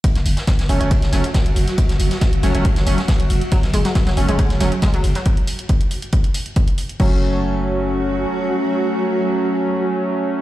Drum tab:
CC |----------------|----------------|----------------|----------------|
RD |x-x-x-x-x-x-xxx-|x-x-x-x-x-x-x-xx|x-x-x-x-x-x-xxx-|----------------|
HH |xxoxxxoxxxoxxxox|xxoxxxoxxxoxxxox|xxoxxxoxxxoxxxox|xxoxxxoxxxoxxxox|
SD |-o-ooo---oo-o--o|-o-oo----o-oo---|-o-ooo---oo-o--o|----------------|
BD |o---o---o---o---|o---o---o---o---|o---o---o---o---|o---o---o---o---|

CC |x---------------|----------------|
RD |----------------|----------------|
HH |----------------|----------------|
SD |----------------|----------------|
BD |o---------------|----------------|